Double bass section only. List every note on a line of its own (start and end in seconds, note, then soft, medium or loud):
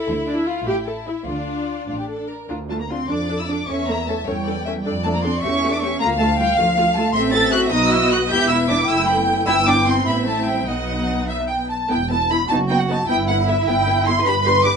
0.08 0.55 D2 medium
0.68 1.15 A1 medium
1.28 1.76 D2 medium
1.89 2.38 A1 soft
2.50 3.03 D2 medium
3.10 3.62 F2 medium
3.69 4.20 E2 medium
4.27 4.78 E2 medium
4.86 5.37 F2 medium
5.43 5.94 E2 medium
6.01 6.52 D2 medium
6.59 7.09 D2 medium
7.15 7.69 A1 medium
7.73 8.30 B1 medium
8.31 8.90 E1 medium
8.89 9.47 F#1 medium
9.47 10.06 G1 medium
10.07 10.68 A1 medium
10.68 11.70 B1 medium
11.91 12.42 E1 medium
12.50 13.01 F#1 medium
13.09 13.60 G1 medium
13.68 14.18 G1 medium
14.25 14.76 G1 medium